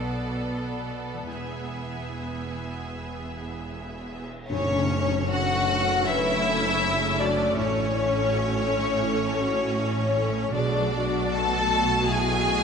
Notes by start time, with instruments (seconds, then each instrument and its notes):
Already playing: double bass section B1, harp B2 A3 B3 D4, cello section B2, viola section B3, violin section A4 D5
1.13 harp E3
1.18 harp G#3
1.22 harp B3
1.27 harp E4, violin section E5
1.31 double bass section E1, cello section E2, violin section G#4
4.49 double bass section F#1, cello section F#2, harp F#2, viola section A3 C#4, violin section C#4 C#5, tam-tam
4.77 harp C#3
5.03 harp A3
5.30 violin section F#4 F#5
5.57 harp A3
6.06 harp F#2, violin section E4 E5, french horn section B4
6.33 harp A3
6.46 french horn section A4
6.82 harp A3, french horn section G#4
7.19 violin section D4 D5, french horn section F#4
7.32 harp A3
7.56 double bass section A1, harp A2, cello section A2, violin section C#4 C#5, french horn section E4
7.81 harp E3
8.05 harp C#4
8.29 harp A3, french horn section F#4
8.54 harp C#4
8.67 french horn section E4
8.79 harp E3
9.03 harp A2, french horn section A4
9.29 harp A3
9.41 french horn section F#4
9.53 harp C#4
9.78 harp A3, french horn section E4
10.04 harp C#4
10.17 french horn section A4
10.28 harp E3
10.53 double bass section B1, harp B2, cello section B2, viola section A3 F#4, violin section D4 D5, french horn section G#4
10.79 harp F#3
10.93 french horn section F#4
11.06 harp B3
11.33 harp A3, violin section A4 A5
11.58 harp B3
11.83 harp F#3
12.06 harp B2, french horn section E4, violin section G#4 G#5
12.32 harp A3
12.56 harp B3